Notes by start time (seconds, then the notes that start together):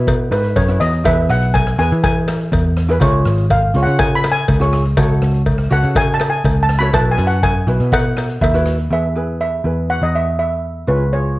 Already playing: B2 E4 F#4 B4
0.07 kick, closed hi-hat, cowbell
0.31 G#2 B4, cross-stick, closed hi-hat, cowbell
0.45 closed hi-hat
0.56 F#2 C#5, kick, closed hi-hat, cowbell
0.68 E4 F#4 B4, cross-stick
0.80 E2 D#5, cross-stick, closed hi-hat
0.93 closed hi-hat
1.04 E2 E4 G#4 B4 E5, kick, closed hi-hat, cowbell
1.29 B1 F#5, cross-stick, closed hi-hat
1.42 closed hi-hat
1.54 G#5, kick, closed hi-hat, cowbell
1.67 cross-stick
1.78 E2 E4 G#4 B4 G#5, closed hi-hat
1.92 E3, closed hi-hat
2.03 G#5, kick, closed hi-hat, cowbell
2.28 cross-stick, closed hi-hat, cowbell
2.41 closed hi-hat
2.52 E2, kick, closed hi-hat, cowbell
2.77 cross-stick, closed hi-hat
2.89 E4 G#4 B4, closed hi-hat
3.00 C#2 F4 G#4 C#5, kick, closed hi-hat, cowbell
3.25 G#1, cross-stick, closed hi-hat
3.38 closed hi-hat
3.50 F5, kick, closed hi-hat, cowbell
3.74 C#2 F4 G#4 C#5, closed hi-hat
3.83 F#5
3.87 C#3, closed hi-hat
3.99 G#5, kick, closed hi-hat, cowbell
4.15 B5
4.24 cross-stick, closed hi-hat, cowbell
4.32 G#5
4.37 closed hi-hat
4.48 C#2, kick, closed hi-hat, cowbell
4.60 F4 G#4 C#5, cross-stick
4.73 cross-stick, closed hi-hat
4.86 closed hi-hat
4.97 C#2 F#4 A4 C#5, kick, closed hi-hat, cowbell
5.22 C#2, cross-stick, closed hi-hat
5.34 closed hi-hat
5.46 kick, closed hi-hat, cowbell
5.58 cross-stick
5.70 C#2 F#4 A4 C#5 F#5, closed hi-hat
5.83 C#3, closed hi-hat
5.95 G#5, kick, closed hi-hat, cowbell
6.14 A5
6.20 cross-stick, closed hi-hat, cowbell
6.30 G#5, closed hi-hat
6.44 C#2, kick, closed hi-hat, cowbell
6.63 A5
6.69 cross-stick, closed hi-hat
6.79 F#4 A4 C#5 B5, closed hi-hat
6.93 B1 E4 F#4 B4 A5, kick, closed hi-hat, cowbell
7.11 G#5
7.18 F#2, cross-stick, closed hi-hat
7.27 F#5, closed hi-hat
7.43 G#5, kick, closed hi-hat, cowbell
7.67 B1 E4 F#4 B4, closed hi-hat
7.80 B2, closed hi-hat
7.92 F#5, kick, closed hi-hat, cowbell
8.17 cross-stick, closed hi-hat, cowbell
8.29 closed hi-hat
8.41 D#2 E5, kick, closed hi-hat, cowbell
8.54 E4 F#4 B4, cross-stick
8.66 cross-stick, closed hi-hat
8.79 closed hi-hat
8.90 E2 E4 G#4 B4 E5
9.16 E4 G#4 B4
9.41 E5
9.64 E2 E4 G#4 B4
9.90 F#5
10.02 E2 D#5
10.15 E5
10.39 E5
10.87 C#2 F4 G#4 B4 C#5
11.13 F4 G#4 C#5